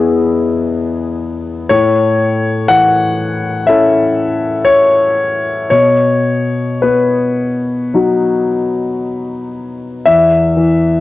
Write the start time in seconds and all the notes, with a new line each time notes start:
Already playing: E2 B3 E4 G#4 D#5 E5
1.69 A2 C#5
2.68 E3 F#5
3.67 C#4 E4 A4 E5
4.65 C#5
5.70 B2 C#5
6.82 B3 B4
7.94 F#3 D#4 F#4
10.05 E2 E5
10.57 E3